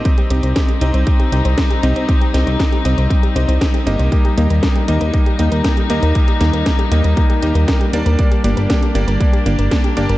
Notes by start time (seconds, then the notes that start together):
Already playing: C4 D#4 G4 D#5
0.05 G3 C4 D#4, kick, closed hi-hat
0.18 G4, closed hi-hat
0.30 C2 C4 D#4 G4 D#5, closed hi-hat
0.43 C2 C5, closed hi-hat
0.56 C4, kick, snare, closed hi-hat
0.68 G4, closed hi-hat
0.81 C2 C4 D#4 G4 D#5, closed hi-hat
0.94 C2 C5, closed hi-hat
1.07 C4, kick, closed hi-hat
1.20 G4, closed hi-hat
1.32 C2 C4 D#4 G4 D#5, closed hi-hat
1.45 C2 C5, closed hi-hat
1.58 C4, kick, snare, closed hi-hat
1.70 G4, closed hi-hat
1.83 C2 C4 D#4 G4 D#5, closed hi-hat
1.96 C2 C5, closed hi-hat
2.09 C4, kick, closed hi-hat
2.21 G4, closed hi-hat
2.34 C2 C4 D#4 G4 D#5, snare, closed hi-hat
2.47 C2 C5, closed hi-hat
2.59 C4, kick, snare, closed hi-hat
2.72 G4, closed hi-hat
2.85 C2 C4 D#4 G4 D#5, closed hi-hat
2.98 C2 C5, closed hi-hat
3.10 C4, kick, closed hi-hat
3.23 G4, closed hi-hat
3.36 C2 C4 D#4 G4 D#5, closed hi-hat
3.48 C2 C5, closed hi-hat
3.61 C4, kick, snare, closed hi-hat
3.74 G4, closed hi-hat
3.86 G1 A#3 C4 D#4 G4 D#5, closed hi-hat
3.99 C2 C5, closed hi-hat
4.12 A#3 D#4, kick, closed hi-hat
4.25 G4, closed hi-hat
4.38 D#2 A#3 D#4 G4 D#5, closed hi-hat
4.50 D#2 A#4, closed hi-hat
4.63 A#3, kick, snare, closed hi-hat
4.76 G4, closed hi-hat
4.88 D#2 A#3 D#4 G4 D#5, closed hi-hat
5.01 D#2 A#4, closed hi-hat
5.14 A#3, kick, closed hi-hat
5.26 G4, closed hi-hat
5.39 D#2 A#3 D#4 G4 D#5, closed hi-hat
5.52 D#2 A#4, closed hi-hat
5.64 A#3, kick, snare, closed hi-hat
5.77 G4, closed hi-hat
5.90 D#2 A#3 D#4 G4 D#5, closed hi-hat
6.03 D#2 A#4, closed hi-hat
6.15 A#3, kick, closed hi-hat
6.28 G4, closed hi-hat
6.41 D#2 A#3 D#4 G4 D#5, snare, closed hi-hat
6.53 D#2 A#4, closed hi-hat
6.66 A#3, kick, snare, closed hi-hat
6.79 G4, closed hi-hat
6.91 D#2 A#3 D#4 G4 D#5, closed hi-hat
7.04 D#2 A#4, closed hi-hat
7.17 A#3, kick, closed hi-hat
7.30 G4, closed hi-hat
7.42 D#2 A#3 D#4 G4 D#5, closed hi-hat
7.55 D#2 A#4, closed hi-hat
7.68 A#3, kick, snare, closed hi-hat
7.81 G4, closed hi-hat
7.93 D#2 A#3 D4 G4 D5, closed hi-hat
8.06 D#2 A#4, closed hi-hat
8.19 A#3 D4, kick, closed hi-hat
8.31 G4, closed hi-hat
8.44 G1 A#3 D4 G4 D5, closed hi-hat
8.57 G1 A#4, closed hi-hat
8.70 A#3, kick, snare, closed hi-hat
8.82 G4, closed hi-hat
8.95 G1 A#3 D4 G4 D5, closed hi-hat
9.07 G1 A#4, closed hi-hat
9.20 A#3, kick, closed hi-hat
9.33 G4, closed hi-hat
9.46 G1 A#3 D4 G4 D5, closed hi-hat
9.59 G1 A#4, closed hi-hat
9.71 A#3, kick, snare, closed hi-hat
9.84 G4, closed hi-hat
9.97 G1 A#3 D4 G4 D5, closed hi-hat
10.09 G1 A#4, closed hi-hat